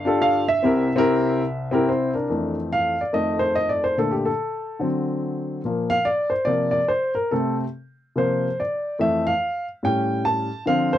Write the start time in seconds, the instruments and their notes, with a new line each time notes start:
Already playing: upright piano G1 G2, grand piano F5
0.05 upright piano D4 F4 G4 A4
0.22 grand piano F5
0.48 grand piano E5
0.63 upright piano C2 C3 C4 E4 G4 A#4
0.96 upright piano C4 E4 G4 A#4
1.71 upright piano C4 E4 G4 A#4
1.89 upright piano E4 C5
2.14 upright piano D4 A#4
2.30 upright piano F2 E3 A3
2.73 upright piano F5
3.01 upright piano D5
3.13 upright piano F2 D#3 A3 D#5
3.39 upright piano C5
3.55 upright piano D#5
3.69 upright piano D5
3.84 upright piano C5
3.98 upright piano A#2 D3 A3 A4
4.11 upright piano G4
4.25 upright piano A4
4.79 upright piano D3 F#3 C4
5.65 upright piano A#2 F3 A#3
5.90 upright piano F5
6.05 upright piano D5
6.30 upright piano C5
6.45 upright piano C3 F3 A#3 D5
6.71 upright piano D5
6.88 upright piano C5
7.15 upright piano A#4
7.31 upright piano C3 A3 C4 A4
8.16 upright piano C3 F3 A#3 C5
8.60 upright piano D5
8.99 upright piano F2 E3 A3 E5
9.27 upright piano F5
9.83 upright piano A2 G3 C#4 G5
10.25 upright piano A5
10.66 upright piano D3 F3 C4 F5
10.93 upright piano C5